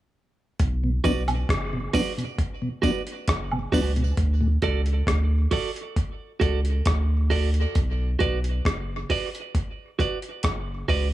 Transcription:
0.59 B1, kick, closed hi-hat
0.84 B2
1.04 B1 F#3 B3 D4 F#4 B4 D5, kick, closed hi-hat, tambourine
1.28 B2, closed hi-hat, high woodblock
1.49 F#1, kick, cross-stick, closed hi-hat
1.73 B2
1.93 F#3 B3 D4 F#4 B4 D5, kick, open hi-hat, tambourine
2.17 B2, closed hi-hat
2.38 kick, closed hi-hat
2.62 B2
2.82 F#3 B3 D4 F#4 B4 D5, kick, closed hi-hat, tambourine
3.07 closed hi-hat
3.28 F#1, kick, cross-stick, closed hi-hat
3.51 B2, high woodblock
3.72 C#2 F#3 B3 D4 F#4 B4 D5, kick, open hi-hat, tambourine
3.96 B2, closed hi-hat
4.17 D2, kick, closed hi-hat
4.41 D2 A2
4.62 C#2 F#4 A4 D5, kick, closed hi-hat
4.86 closed hi-hat
5.07 D2, kick, cross-stick, closed hi-hat
5.51 F#4 A4 D5, kick, open hi-hat
5.76 closed hi-hat
5.96 kick, closed hi-hat
6.40 C#2 F#4 A4 D5, kick, closed hi-hat
6.65 closed hi-hat
6.86 D2, kick, cross-stick, closed hi-hat
7.30 F#4 A4 D5, kick, open hi-hat
7.54 closed hi-hat
7.75 B1, kick, closed hi-hat
8.19 B1 F#4 B4 D5, kick, closed hi-hat
8.44 closed hi-hat
8.65 F#1, kick, cross-stick, closed hi-hat
9.10 F#4 B4 D5, kick, open hi-hat
9.35 closed hi-hat
9.55 kick, closed hi-hat
9.99 F#4 B4 D5, kick, closed hi-hat
10.22 closed hi-hat
10.43 F#1, kick, cross-stick, closed hi-hat
10.88 C#2 F#4 B4 D5, kick, open hi-hat

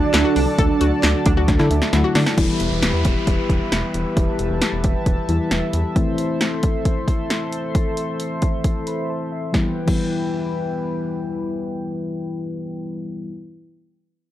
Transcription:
Already playing: D3 F#3 A3 D4 F#4 A4 D5 A5
0.14 D2 E4, snare, clap, closed hi-hat
0.25 F#4
0.36 C2 D4, open hi-hat
0.58 D2 A4, kick, closed hi-hat
0.81 D2 F#4, closed hi-hat
1.03 D2 D4, snare, clap, closed hi-hat
1.25 D2 D4, kick, closed hi-hat
1.37 D2 F#4
1.48 D2, kick, snare, closed hi-hat
1.59 D3 E4, snare
1.70 D2 E5, closed hi-hat
1.82 snare
1.93 D2 D3 F#3 A3 E4 F#5, snare, closed hi-hat
2.04 F#4
2.15 D3 D4 A5, snare, open hi-hat
2.27 snare
2.38 E1 E3 G3 B3 E4 G4 B4 E5 B5, kick, closed hi-hat, crash, downlifter
2.60 E1, closed hi-hat
2.71 E1
2.82 E1, snare, closed hi-hat
2.94 E2
3.05 E1, kick, closed hi-hat
3.27 E1, kick, closed hi-hat
3.50 E1, kick, closed hi-hat
3.72 E1, snare, closed hi-hat
3.94 E1, closed hi-hat
4.17 E1 A5, kick, closed hi-hat
4.39 E1, closed hi-hat
4.50 E1
4.62 snare, closed hi-hat
4.73 E1
4.84 E1, kick, closed hi-hat
5.06 E1, kick, closed hi-hat
5.29 E2 E3 G3 B3 E4, closed hi-hat
5.51 E1, snare, closed hi-hat
5.73 E2, closed hi-hat
5.96 E3 A3 C4 E4 A4 C5 C6, kick, closed hi-hat
6.18 closed hi-hat
6.41 snare, closed hi-hat
6.63 kick, closed hi-hat
6.85 kick, closed hi-hat
7.08 kick, closed hi-hat
7.30 snare, closed hi-hat
7.52 closed hi-hat
7.75 kick, closed hi-hat
7.97 closed hi-hat
8.20 closed hi-hat
8.42 kick, closed hi-hat
8.64 kick, closed hi-hat
8.87 B5, closed hi-hat
9.09 A5
9.32 E5
9.52 E3 G3 B3 E4 B4 G5, kick, snare
9.56 E4
9.86 E3 G3 B3, kick, crash
9.90 E4

